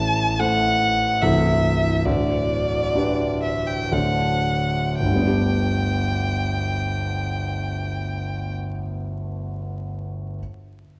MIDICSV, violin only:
0, 0, Header, 1, 2, 480
1, 0, Start_track
1, 0, Key_signature, 1, "major"
1, 0, Tempo, 827586
1, 1195, Time_signature, 3, 2, 24, 8
1, 1196, Tempo, 887574
1, 1676, Tempo, 967742
1, 2156, Tempo, 1077199
1, 3596, Tempo, 1052632
1, 5350, End_track
2, 0, Start_track
2, 0, Title_t, "Violin"
2, 0, Program_c, 0, 40
2, 0, Note_on_c, 0, 81, 73
2, 229, Note_on_c, 0, 78, 78
2, 238, Note_off_c, 0, 81, 0
2, 702, Note_on_c, 0, 76, 63
2, 711, Note_off_c, 0, 78, 0
2, 1189, Note_on_c, 0, 74, 67
2, 1198, Note_off_c, 0, 76, 0
2, 1907, Note_off_c, 0, 74, 0
2, 1913, Note_on_c, 0, 76, 55
2, 2033, Note_on_c, 0, 79, 59
2, 2041, Note_off_c, 0, 76, 0
2, 2162, Note_on_c, 0, 78, 55
2, 2169, Note_off_c, 0, 79, 0
2, 2637, Note_off_c, 0, 78, 0
2, 2640, Note_on_c, 0, 79, 44
2, 4233, Note_off_c, 0, 79, 0
2, 5350, End_track
0, 0, End_of_file